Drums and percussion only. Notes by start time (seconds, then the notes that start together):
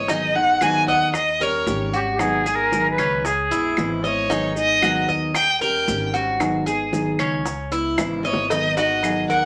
0.08 high bongo, maracas
0.35 high bongo
0.61 high bongo, claves, maracas
0.87 high bongo, maracas
1.14 high bongo, claves, maracas
1.40 high bongo, maracas
1.67 high bongo, low bongo, maracas
1.94 maracas
2.19 high bongo, claves, maracas
2.46 high bongo, maracas
2.72 high bongo, maracas
2.98 high bongo, claves, maracas
3.25 high bongo, maracas
3.51 high bongo, maracas
3.77 high bongo, low bongo, claves, maracas
4.05 maracas
4.30 high bongo, maracas
4.56 high bongo, maracas
4.82 high bongo, claves, maracas
5.09 high bongo, maracas
5.35 high bongo, claves, maracas
5.61 high bongo, maracas
5.88 high bongo, low bongo, maracas
6.14 maracas
6.40 high bongo, claves, maracas
6.67 high bongo, maracas
6.93 high bongo, maracas
7.19 high bongo, claves, maracas
7.46 high bongo, maracas
7.72 high bongo, maracas
7.98 high bongo, claves, maracas
8.25 maracas
8.33 low bongo
8.50 cowbell, maracas
8.77 cowbell, maracas
9.03 cowbell, claves, maracas
9.30 maracas